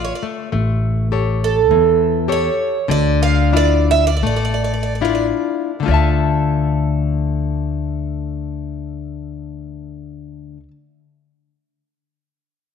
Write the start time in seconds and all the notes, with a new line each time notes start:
Already playing: F4
0.05 C#5
0.15 D5
0.23 A3
0.52 A1 A3
1.12 G4 A4 C#5
1.44 A4
1.71 E2 E3
2.28 G4 A4 C#5
2.88 D2 D3 D5
3.23 F5
3.53 D4 E4 F4 D5
3.91 E5
4.07 D5
4.17 D5
4.23 A1 A3 D5
4.36 D5
4.45 D5
4.54 D5
4.64 D5
4.74 D5
4.83 D5
4.95 D5
5.01 D4 E4 F4 D5
5.15 D5
5.80 D3 A3
5.86 D2 F4 D5
5.91 E5 A5